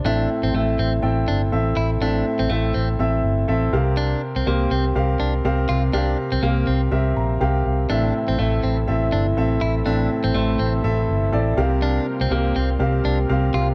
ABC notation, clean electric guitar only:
X:1
M:4/4
L:1/16
Q:"Swing 16ths" 1/4=122
K:Aphr
V:1 name="Clean electric guitar"
D2 z C A,2 C z3 D z3 E z | D2 z C A,2 C z8 z | D2 z C B,2 C z3 D z3 F z | D2 z C B,2 C z8 z |
D2 z C A,2 C z3 D z3 E z | D2 z C A,2 C z8 z | D2 z C B,2 C z3 D z3 F z |]